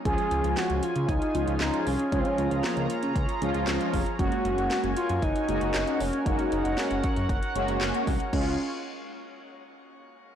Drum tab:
CC |----------------|----------------|----------------|----------------|
HH |xxxxxxxxxxxxxxox|xxxxxxxxxxxxxxox|xxxxxxxxxxxxxxox|xxxxxxxxxxxxxxox|
CP |------------x---|------------x---|------------x---|------------x---|
SD |----o-------o---|----o-------o---|----o-------o---|----o-------o---|
BD |o-------o-------|o-------o-----o-|o-------o-------|o-----o-o-----o-|

CC |x---------------|
HH |----------------|
CP |----------------|
SD |----------------|
BD |o---------------|